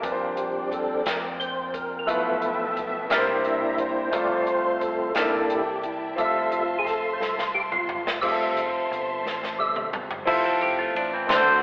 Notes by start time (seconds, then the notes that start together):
0.01 A#1 A#2 G3 A#3 C4 D4 G4 C5 D5 G5, kick, closed hi-hat
0.05 F4 B4
0.12 C5
0.37 G4, closed hi-hat
0.72 A4, kick, closed hi-hat
1.06 F2 A#4, snare, closed hi-hat
1.40 C5, closed hi-hat
1.74 A#4, kick, closed hi-hat
1.99 A#4
2.06 B1 B2 F3 A3 B3 E4 F4 B4 E5, kick, closed hi-hat
2.10 B4 E5 G5 A5
2.42 closed hi-hat
2.77 kick, closed hi-hat
3.09 C2 C3 A#3 E4 G4 A#4 C5 G5 A#5, snare, closed hi-hat
3.13 D4 E4
3.18 C5
3.44 E5, closed hi-hat
3.78 C5, kick, closed hi-hat
4.11 C2 C3 A3 C4 F4 C5 D5 F5 A5 C6, kick, closed hi-hat
4.41 D5
4.47 C5, closed hi-hat
4.81 A4, kick, closed hi-hat
5.15 C2 C3 A#3 D4 D#4 A4 D5 E5 G5 A5, snare, closed hi-hat
5.19 E4
5.50 G4, closed hi-hat
5.83 E4, kick, closed hi-hat
6.16 F1 G3 A3 C4 F4 A4 E5 C6, kick, closed hi-hat
6.20 E5
6.52 F4, closed hi-hat
6.79 G#4
6.85 A4, kick, snare, closed hi-hat
7.13 C5
7.20 C2 A4, snare
7.39 snare
7.54 G4
7.72 F4, mid tom
7.89 floor tom
8.07 snare
8.21 F1 G3 A3 C4 F4 G#4 C5 E5 A5 C6, kick, crash
8.26 E5
8.31 A4
8.57 closed hi-hat
8.91 G1, closed hi-hat
9.24 A1, snare
9.43 snare
9.58 G3 A3 E5
9.76 mid tom
9.92 E1, mid tom
10.11 floor tom
10.25 F1 C4 E4 F4 A4 C5 E5, kick, crash
10.45 C4 A4
10.61 G4, ride bell
10.79 A3 F4
10.93 A1 F3 D4, ride bell
11.13 E3 C4
11.27 D2 D3 C4 D4 E4 F#4 A4 C5 D5, snare, ride bell
11.34 F#4